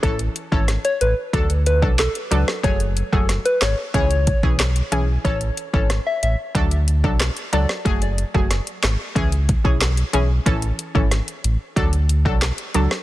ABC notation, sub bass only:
X:1
M:4/4
L:1/16
Q:1/4=92
K:F#m
V:1 name="Sub bass" clef=bass
A,,,2 z G,,,2 z A,,, z D,,3 B,,,2 z C,, z | F,,,3 F,,,2 z G,,, z C,,3 B,,,3 B,,,2 | A,,,2 z G,,,2 z A,,, z D,,3 B,,,2 z C,, z | F,,,3 F,,,2 z G,,, z C,,3 B,,,3 B,,,2 |
A,,,2 z G,,,2 z A,,, z D,,3 B,,,2 z C,, z |]